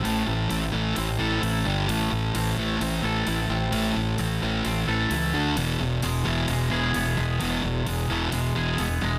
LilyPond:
<<
  \new Staff \with { instrumentName = "Clean electric guitar" } { \time 4/4 \key a \minor \tempo 4 = 130 <a, c' e' a'>4 c'8 e8 c'8 a'8 e'8 g8 | a,4 c'8 e8 c'8 a'8 e'8 c'8 | a,4 c'8 e8 c'8 a'8 e'8 d8 | e,4 gis8 e8 gis8 gis'8 b8 gis8 |
e,4 gis8 e8 gis8 gis'8 b8 gis8 | }
  \new Staff \with { instrumentName = "Distorted electric guitar" } { \clef bass \time 4/4 \key a \minor <a, e a>8 <a, e>8 <a, e>8 <a, e a>8 <a, e>8 <a, e a>8 <a, e>8 <g, d g>8 | <a, e a>8 <a, e>8 <a, e>8 <a, e a>8 <a, e>8 <a, e a>8 <a, e>8 <a, e>8 | <a, e a>8 <a, e>8 <a, e>8 <a, e a>8 <a, e>8 <a, e a>8 <a, e>8 <d a d'>8 | <e, b, e>8 <e, b,>8 <e, b,>8 <e, b, e>8 <e, b,>8 <e, b, e>8 <e, b,>8 <e, b,>8 |
<e, b, e>8 <e, b,>8 <e, b,>8 <e, b, e>8 <e, b,>8 <e, b, e>8 <e, b,>8 <e, b,>8 | }
  \new Staff \with { instrumentName = "Fingered electric bass" } { \clef bass \time 4/4 \key a \minor a,,8 a,,8 a,,8 a,,8 a,,8 a,,8 a,,8 g,,8 | a,,8 a,,8 a,,8 a,,8 a,,8 a,,8 a,,8 a,,8 | a,,8 a,,8 a,,8 a,,8 a,,8 a,,8 cis,8 d,8 | e,,8 e,,8 e,,8 e,,8 e,,8 e,,8 e,,8 e,,8 |
e,,8 e,,8 e,,8 e,,8 e,,8 e,,8 e,,8 e,,8 | }
  \new DrumStaff \with { instrumentName = "Drums" } \drummode { \time 4/4 hho4 hho4 hho4 hho4 | hho4 hho4 hho4 hho4 | hho4 hho4 hho4 hho4 | hho4 hho4 hho4 hho4 |
hho4 hho4 hho4 hho4 | }
>>